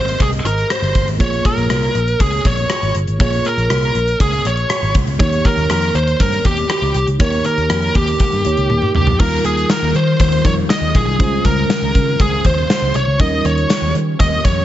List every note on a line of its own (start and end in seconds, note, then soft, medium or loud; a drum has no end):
0.00 0.14 G#1 medium
0.00 1.22 G#2 medium
0.00 1.15 C4 medium
0.00 1.16 G4 medium
0.00 1.16 G#4 medium
0.00 0.22 C5 medium
0.00 1.17 D#5 medium
0.08 closed hi-hat medium
0.20 0.39 C2 medium
0.20 0.28 G#4 medium
0.20 kick medium
0.20 closed hi-hat medium
0.33 closed hi-hat medium
0.45 0.64 G#1 medium
0.45 0.69 A#4 medium
0.45 closed hi-hat medium
0.58 closed hi-hat soft
0.70 1.06 C5 medium
0.70 cross-stick loud
0.70 closed hi-hat medium
0.82 0.92 G1 medium
0.82 closed hi-hat soft
0.95 1.04 G1 medium
0.95 kick medium
0.95 closed hi-hat medium
1.07 1.17 G#1 medium
1.07 closed hi-hat soft
1.18 1.39 A#1 medium
1.18 1.91 A#2 medium
1.18 3.15 A#3 medium
1.18 3.16 F4 medium
1.18 3.16 G#4 medium
1.18 1.44 C#5 loud
1.18 3.17 C#5 medium
1.18 kick loud
1.18 closed hi-hat medium
1.33 closed hi-hat medium
1.45 2.21 A#4 medium
1.45 kick medium
1.45 closed hi-hat medium
1.57 1.67 A#1 medium
1.57 closed hi-hat medium
1.70 1.89 C2 medium
1.70 cross-stick medium
1.70 closed hi-hat medium
1.82 closed hi-hat soft
1.95 2.14 A#1 medium
1.95 closed hi-hat medium
2.08 closed hi-hat medium
2.20 2.39 C#2 medium
2.20 2.46 G#4 medium
2.20 kick medium
2.20 closed hi-hat medium
2.33 closed hi-hat medium
2.45 2.64 A#1 medium
2.45 2.92 C#5 medium
2.45 kick medium
2.45 closed hi-hat medium
2.57 closed hi-hat soft
2.70 cross-stick loud
2.70 closed hi-hat medium
2.82 2.92 G#1 medium
2.82 closed hi-hat soft
2.95 3.04 G1 medium
2.95 closed hi-hat medium
3.07 3.17 G#1 medium
3.07 closed hi-hat soft
3.19 3.39 A#1 loud
3.19 3.91 A#2 medium
3.19 5.15 A#3 medium
3.19 5.16 F4 medium
3.19 5.16 G#4 medium
3.19 3.46 C#5 loud
3.19 5.17 C#5 medium
3.19 kick loud
3.19 closed hi-hat medium
3.33 closed hi-hat medium
3.45 4.17 A#4 medium
3.45 closed hi-hat medium
3.57 3.67 A#1 medium
3.57 closed hi-hat medium
3.70 3.89 C2 medium
3.70 cross-stick medium
3.70 closed hi-hat medium
3.82 closed hi-hat soft
3.95 4.14 A#1 medium
3.95 closed hi-hat medium
4.08 closed hi-hat medium
4.20 4.39 C#2 medium
4.20 4.46 G#4 medium
4.20 kick medium
4.20 closed hi-hat medium
4.33 closed hi-hat soft
4.45 4.64 A#1 medium
4.45 4.92 C#5 medium
4.45 closed hi-hat medium
4.57 closed hi-hat soft
4.70 cross-stick loud
4.70 closed hi-hat medium
4.82 4.92 G#1 medium
4.82 closed hi-hat soft
4.94 5.04 C2 medium
4.94 kick medium
4.94 closed hi-hat medium
5.07 5.16 C#2 medium
5.07 closed hi-hat soft
5.18 5.39 D#2 medium
5.18 5.91 D#3 medium
5.18 7.15 A#3 medium
5.18 7.16 D#4 medium
5.18 7.16 G4 medium
5.18 5.46 C#5 loud
5.18 7.17 C#5 medium
5.18 kick loud
5.18 closed hi-hat medium
5.33 closed hi-hat medium
5.45 5.70 A#4 medium
5.45 kick medium
5.45 closed hi-hat medium
5.57 5.67 D#2 medium
5.57 closed hi-hat soft
5.70 5.89 F2 medium
5.70 5.96 A#4 medium
5.70 cross-stick medium
5.70 closed hi-hat medium
5.82 closed hi-hat soft
5.94 6.13 D#2 medium
5.94 6.21 C5 medium
5.94 closed hi-hat medium
6.08 closed hi-hat medium
6.20 6.39 G2 medium
6.20 6.46 A#4 medium
6.20 kick medium
6.20 closed hi-hat medium
6.32 closed hi-hat medium
6.45 6.64 D#2 medium
6.45 6.70 G4 medium
6.45 kick medium
6.45 closed hi-hat medium
6.57 closed hi-hat medium
6.70 7.06 G4 medium
6.70 cross-stick loud
6.70 closed hi-hat medium
6.82 6.91 C#2 medium
6.82 closed hi-hat soft
6.94 7.04 C2 medium
6.94 closed hi-hat medium
7.07 7.17 C#2 medium
7.07 closed hi-hat medium
7.19 7.39 D#2 medium
7.19 7.91 D#3 medium
7.19 8.42 A#3 medium
7.19 8.43 D#4 medium
7.19 8.43 G4 medium
7.19 8.43 A#4 medium
7.19 7.44 C#5 medium
7.19 kick loud
7.19 closed hi-hat medium
7.33 closed hi-hat medium
7.44 7.96 A#4 medium
7.44 closed hi-hat medium
7.58 7.67 D#2 medium
7.58 closed hi-hat soft
7.70 7.89 F2 medium
7.70 cross-stick medium
7.70 closed hi-hat medium
7.82 closed hi-hat soft
7.95 8.14 D#2 medium
7.95 8.92 G4 medium
7.95 kick medium
7.95 closed hi-hat medium
8.08 closed hi-hat medium
8.20 kick medium
8.20 closed hi-hat medium
8.32 8.42 G2 medium
8.32 closed hi-hat soft
8.45 8.55 D#2 medium
8.45 9.20 A#3 soft
8.45 9.18 D#4 soft
8.45 9.20 G4 soft
8.45 9.21 C#5 soft
8.45 closed hi-hat medium
8.57 8.67 C#2 medium
8.57 closed hi-hat soft
8.70 8.79 D#2 medium
8.70 high tom medium
8.82 mid tom soft
8.95 9.05 C#2 medium
8.95 9.20 G4 medium
8.95 mid tom medium
9.07 9.17 F2 medium
9.07 floor tom medium
9.19 9.39 D#2 medium
9.19 11.18 D#3 medium
9.19 9.91 D#3 medium
9.19 10.42 G3 medium
9.19 11.17 G3 medium
9.19 10.42 D#4 medium
9.19 11.17 F4 medium
9.19 10.43 F4 medium
9.19 9.45 A#4 medium
9.19 10.43 A#4 medium
9.19 kick loud
9.19 crash medium
9.45 9.64 D#2 medium
9.45 9.69 G#4 medium
9.45 closed hi-hat medium
9.57 closed hi-hat medium
9.70 9.96 A#4 medium
9.70 snare medium
9.70 closed hi-hat medium
9.82 9.92 D#2 medium
9.95 10.14 D#3 medium
9.95 10.19 C5 medium
9.95 closed hi-hat medium
10.20 10.39 D#2 medium
10.20 10.46 C5 medium
10.20 kick medium
10.20 closed hi-hat medium
10.32 closed hi-hat soft
10.44 10.64 F2 medium
10.44 11.20 G3 soft
10.44 11.20 D#4 soft
10.44 11.19 F4 soft
10.44 11.20 A#4 soft
10.44 10.53 C#5 medium
10.44 kick medium
10.44 closed hi-hat medium
10.70 10.96 D#5 medium
10.70 snare loud
10.70 closed hi-hat medium
10.81 10.91 D#2 medium
10.95 11.04 A#1 medium
10.95 11.46 G#4 medium
10.95 kick medium
10.95 closed hi-hat medium
11.07 11.17 C2 medium
11.18 11.39 C#2 medium
11.18 11.91 C#3 medium
11.18 13.18 C#3 medium
11.18 13.15 G#3 medium
11.18 13.15 C#4 medium
11.18 13.18 F4 medium
11.18 13.16 F4 medium
11.18 13.18 C5 medium
11.18 13.16 C5 medium
11.18 kick loud
11.18 closed hi-hat medium
11.45 11.64 C#2 medium
11.45 12.21 A#4 medium
11.45 kick medium
11.45 closed hi-hat medium
11.70 snare medium
11.70 closed hi-hat medium
11.82 11.92 C#2 medium
11.95 12.14 C#3 medium
11.95 kick medium
11.95 closed hi-hat medium
12.20 12.39 C#2 medium
12.20 12.44 G#4 medium
12.20 kick medium
12.20 closed hi-hat medium
12.45 12.64 D#2 medium
12.45 12.96 C5 medium
12.45 kick medium
12.45 closed hi-hat medium
12.70 snare loud
12.70 closed hi-hat medium
12.82 12.92 C#2 medium
12.94 13.04 C2 medium
12.94 13.19 C#5 medium
12.94 closed hi-hat medium
13.07 13.16 C#2 medium
13.19 14.65 D#3 medium
13.19 13.91 D#3 medium
13.19 14.65 G3 medium
13.19 14.65 C#4 medium
13.19 14.65 D#4 medium
13.19 14.65 G4 medium
13.19 14.65 A#4 medium
13.19 13.46 D#5 loud
13.19 kick loud
13.19 closed hi-hat medium
13.44 13.63 D#2 medium
13.44 13.92 C#5 medium
13.44 closed hi-hat medium
13.58 closed hi-hat medium
13.70 snare medium
13.70 closed hi-hat medium
13.70 tambourine medium
13.82 13.91 D#2 medium
13.95 14.14 D#3 medium
13.95 closed hi-hat medium
14.20 14.39 D#2 medium
14.20 14.43 D#5 loud
14.20 kick medium
14.20 closed hi-hat medium
14.45 14.64 F2 medium
14.45 14.65 C#5 loud
14.45 kick medium
14.45 closed hi-hat medium